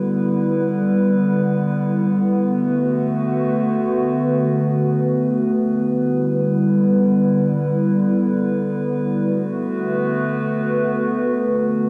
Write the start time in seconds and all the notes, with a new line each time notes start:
Already playing: D3 G3 B3 E4 B4
2.50 D3 A3 F#4 B4
5.86 D3 G3 E4
9.21 D3 A3 B3 F#4 B4